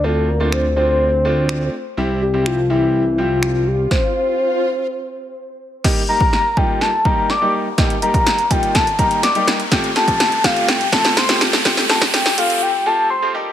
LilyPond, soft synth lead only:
\new Staff \with { instrumentName = "Soft synth lead" } { \time 4/4 \key f \major \tempo 4 = 124 a'8 bes'8 c''8 c''2 r8 | r8 g'8 f'8 e'4 f'4 g'8 | c''2. r4 | r8 bes''4 g''8 a''8 bes''8 d'''8 r8 |
r8 bes''4 g''8 a''8 bes''8 d'''8 r8 | r8 a''4 f''8 g''8 a''8 c'''8 r8 | r8 a''8 g''8 f''8 g''8 a''8 c'''8 r8 | }